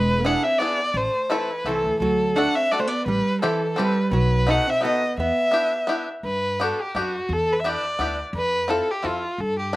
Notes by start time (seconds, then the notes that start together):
Already playing: E1 G#3 B4
0.25 B3 D4 E4 G#4 F#5
0.43 C4 E5
0.58 B3 D4 E4 G#4 D5
0.94 A1 A3 C5
1.30 E3 A3 C4 E4 A4 B4
1.64 C2 A3 C4 E4 A4
1.69 E3
1.84 D2
2.00 D2 F#3 A4
2.36 A3 D4 F#4 A4 F#5
2.55 C4 E5
2.71 A3 D4 F#4 A4 D5
2.79 A3 C5
2.87 B3 D5
3.06 A1 G3 B4
3.42 E3 C4 E4 G4 A4
3.76 G3 C4 E4 G4 A4 B4
4.11 B1 F#3 B4
4.47 B3 D#4 F#4 A4 F#5
4.67 C4 E5
4.81 B3 D#4 F#4 A4
4.85 D#5
5.17 E2 B3 E5
5.51 B3 D4 E4 G4
5.87 B3 D4 E4 G4
6.23 G2 B4
6.60 B3 D4 F#4 G4 A4
6.81 G4
6.90 G4
6.95 F#2 B3 D4 F#4 G4
7.29 E2 A4
7.52 B4
7.60 E5
7.64 B3 D4 E4 G4 D5
7.99 D2 B3 D4 E4 G4
8.33 F2 B4
8.68 C4 E4 F4 A4
8.90 G4
9.03 F2 C4 E4 F4 A4
9.07 F4
9.38 G2 A4
9.59 G4
9.73 D4 E4